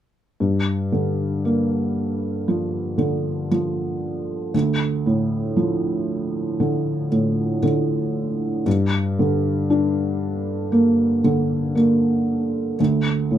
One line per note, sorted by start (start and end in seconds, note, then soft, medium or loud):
0.40 4.51 G2 soft
0.92 2.95 D3 soft
1.45 3.47 A#3 soft
2.48 3.50 F3 soft
2.98 4.50 D3 soft
3.51 4.51 F3 soft
4.54 8.62 D2 soft
5.06 7.08 A2 soft
5.57 7.59 F3 soft
6.60 7.61 D3 soft
7.11 8.62 A2 soft
7.63 8.63 D3 soft
8.66 12.75 G2 soft
9.19 11.21 D3 soft
9.70 11.72 D4 soft
10.72 11.74 A#3 soft
11.24 12.75 D3 soft
11.75 12.76 A#3 soft
12.80 13.38 D2 soft
13.31 13.38 A2 soft